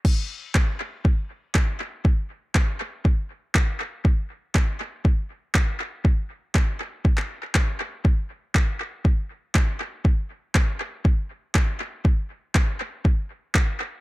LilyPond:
\new DrumStaff \with { instrumentName = "Drums" } \drummode { \time 4/4 \tempo 4 = 120 <cymc bd>4 <hc bd>4 bd4 <hc bd>4 | bd4 <hc bd>4 bd4 <hc bd>4 | bd4 <hc bd>4 bd4 <hc bd>4 | bd4 <hc bd>4 bd16 hc8. <hc bd>4 |
bd4 <hc bd>4 bd4 <hc bd>4 | bd4 <hc bd>4 bd4 <hc bd>4 | bd4 <hc bd>4 bd4 <hc bd>4 | }